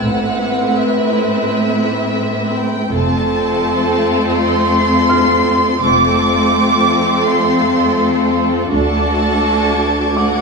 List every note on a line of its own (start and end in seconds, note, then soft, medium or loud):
0.00 0.73 A1 soft
0.00 2.89 A3 soft
0.00 2.89 C4 soft
0.00 2.90 B4 medium
0.00 0.73 D6 soft
0.00 2.55 E6 soft
0.00 2.54 F#6 soft
0.00 0.13 A6 soft
0.04 2.90 A2 soft
0.04 2.90 E4 soft
0.04 0.76 F#5 medium
0.13 1.10 G#6 soft
0.77 2.58 E5 medium
2.57 2.93 G5 medium
2.93 3.62 F1 medium
2.93 5.79 F2 medium
2.93 5.80 A3 soft
2.93 5.79 C4 medium
2.93 5.79 F4 medium
2.93 5.79 A4 medium
2.93 4.38 A5 medium
4.38 5.80 C6 medium
5.09 7.23 F6 soft
5.82 6.51 F1 soft
5.82 8.68 F2 medium
5.82 8.68 A3 soft
5.82 8.68 C4 medium
5.82 8.68 F4 medium
5.82 8.68 A4 medium
5.82 7.24 D6 medium
7.26 8.35 C6 medium
8.71 9.40 D2 soft
8.71 10.41 D2 soft
8.71 10.12 A3 soft
8.71 10.12 D4 soft
8.71 10.13 F#4 soft
8.71 10.13 A4 soft
8.71 10.12 A5 medium
8.71 10.41 D6 soft
9.46 10.41 G#6 soft
10.15 10.41 D3 soft
10.15 10.41 A3 soft
10.15 10.41 F#4 soft
10.15 10.41 A4 soft
10.15 10.41 F#5 medium
10.15 10.41 D6 soft